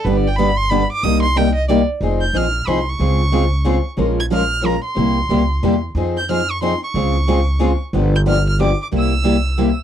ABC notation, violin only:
X:1
M:3/4
L:1/16
Q:"Swing" 1/4=183
K:Cm
V:1 name="Violin"
(3=B2 d2 g2 =b2 c'2 b2 d'2 | e'2 c'2 g2 e2 d2 z2 | [K:Fm] z2 g'2 f'3- f'/2 =b/2 c'2 d'2- | d'8- d'2 z2 |
z2 a'2 f'4 b2 c'2- | c'8- c'2 z2 | z2 g'2 f'2 d'2 c'2 d'2- | d'8- d'2 z2 |
z2 g'2 f'2 f'2 =d'2 d'2 | =e'8- e'2 z2 |]